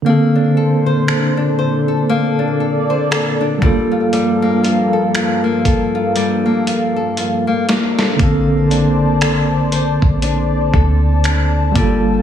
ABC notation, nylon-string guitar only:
X:1
M:4/4
L:1/16
Q:"Swing 16ths" 1/4=59
K:Bb
V:1 name="Nylon-string guitar"
B, D A c A D c A B, D A c A D G, F | G, B, F A F B, A F G, B, F A F B, B, A | B,2 D2 A2 c2 D2 A2 D2 G,2 |]